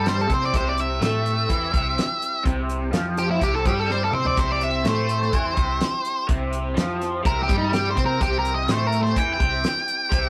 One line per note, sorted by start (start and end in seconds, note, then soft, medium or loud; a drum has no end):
0.00 0.26 G2 medium
0.00 0.28 G3 loud
0.00 10.29 G3 medium
0.00 10.29 C4 medium
0.00 10.29 E4 medium
0.00 10.29 G4 medium
0.06 0.21 C5 medium
0.06 snare loud
0.06 closed hi-hat medium
0.19 0.31 A4 medium
0.19 snare soft
0.28 0.52 C3 medium
0.28 0.52 C4 loud
0.28 kick loud
0.28 closed hi-hat medium
0.34 0.43 C5 medium
0.43 0.55 D5 medium
0.43 snare soft
0.52 0.98 C2 medium
0.52 1.00 C3 loud
0.52 kick loud
0.52 closed hi-hat medium
0.56 0.69 C5 medium
0.69 0.79 D5 medium
0.78 1.02 E5 medium
0.78 closed hi-hat medium
1.00 1.46 A2 loud
1.00 1.48 A3 medium
1.00 2.42 E5 medium
1.00 snare loud
1.00 closed hi-hat medium
1.26 snare soft
1.26 closed hi-hat medium
1.48 1.72 E2 medium
1.48 1.72 E3 medium
1.48 kick medium
1.48 closed hi-hat loud
1.72 1.96 C2 medium
1.72 1.96 C3 loud
1.72 kick loud
1.72 closed hi-hat medium
1.98 snare loud
1.98 closed hi-hat medium
2.22 closed hi-hat medium
2.44 2.90 C2 medium
2.44 2.91 C3 loud
2.44 kick loud
2.44 closed hi-hat medium
2.70 closed hi-hat medium
2.92 3.38 F2 medium
2.92 3.39 F3 medium
2.92 snare loud
2.92 closed hi-hat medium
3.17 3.30 G4 loud
3.17 closed hi-hat medium
3.31 3.43 E4 medium
3.40 3.64 C2 medium
3.40 3.64 C3 loud
3.40 3.54 G4 medium
3.40 kick loud
3.40 closed hi-hat medium
3.54 3.65 A4 medium
3.64 4.10 G2 medium
3.64 4.12 G3 loud
3.64 3.79 G4 medium
3.64 kick loud
3.64 snare soft
3.64 closed hi-hat medium
3.79 3.92 A4 medium
3.90 4.02 C5 loud
3.90 snare medium
4.04 4.14 A4 medium
4.12 4.35 C3 loud
4.12 4.36 C4 medium
4.12 4.26 C5 medium
4.12 mid tom medium
4.25 4.38 D5 medium
4.25 floor tom medium
4.36 4.82 C2 medium
4.36 4.84 C3 loud
4.36 4.50 C5 medium
4.36 kick loud
4.36 closed hi-hat medium
4.52 4.63 D5 medium
4.61 4.85 E5 medium
4.61 snare soft
4.61 closed hi-hat medium
4.84 5.29 A2 medium
4.84 5.32 A3 medium
4.84 snare loud
4.84 closed hi-hat medium
4.88 6.26 C5 loud
5.09 closed hi-hat medium
5.22 snare soft
5.32 5.55 E2 medium
5.32 5.55 E3 medium
5.32 kick loud
5.32 closed hi-hat medium
5.55 5.79 C2 medium
5.55 5.79 C3 medium
5.55 kick loud
5.55 closed hi-hat medium
5.81 snare loud
5.81 closed hi-hat medium
6.05 closed hi-hat medium
6.28 6.74 C2 medium
6.28 6.75 C3 loud
6.28 kick loud
6.28 closed hi-hat loud
6.53 closed hi-hat medium
6.75 7.21 F2 medium
6.75 7.23 F3 medium
6.75 snare loud
6.75 closed hi-hat medium
7.02 snare soft
7.02 closed hi-hat medium
7.23 7.47 C2 medium
7.23 7.47 C3 loud
7.23 7.41 A#4 medium
7.23 kick loud
7.23 closed hi-hat medium
7.43 7.57 G4 medium
7.47 7.94 G2 medium
7.47 7.95 G3 loud
7.47 kick loud
7.47 snare soft
7.47 closed hi-hat medium
7.58 7.73 D#4 loud
7.73 7.88 G4 loud
7.73 snare loud
7.73 closed hi-hat medium
7.91 8.05 C5 medium
7.96 8.19 C3 loud
7.96 8.19 C4 medium
7.96 kick loud
7.96 closed hi-hat medium
8.06 8.21 A#4 medium
8.20 8.65 C2 medium
8.20 8.67 C3 loud
8.20 8.37 G4 medium
8.20 kick loud
8.20 closed hi-hat medium
8.39 8.53 A#4 medium
8.45 closed hi-hat medium
8.54 8.69 D#5 medium
8.67 9.13 A2 medium
8.67 9.15 A3 loud
8.67 8.87 C5 loud
8.67 snare loud
8.67 closed hi-hat medium
8.87 9.01 A#4 medium
8.92 closed hi-hat medium
9.03 9.17 C5 medium
9.03 snare soft
9.15 9.39 E2 medium
9.15 9.39 E3 medium
9.15 9.32 G5 medium
9.15 kick loud
9.15 closed hi-hat loud
9.34 10.26 G5 loud
9.39 9.62 C2 medium
9.39 9.63 C3 loud
9.39 kick loud
9.39 closed hi-hat medium
9.64 snare loud
9.64 closed hi-hat medium
9.77 snare soft
9.88 closed hi-hat medium
10.11 10.29 C2 medium
10.11 10.29 C3 loud
10.11 kick loud
10.11 closed hi-hat medium